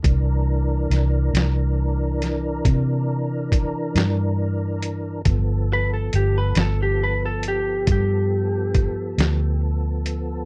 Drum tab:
HH |x-xx-xx-xx-x|x-xx-xx-xx-x|
SD |--oo-o---o--|---o-----o--|
BD |o-----o-o---|o-----o-o---|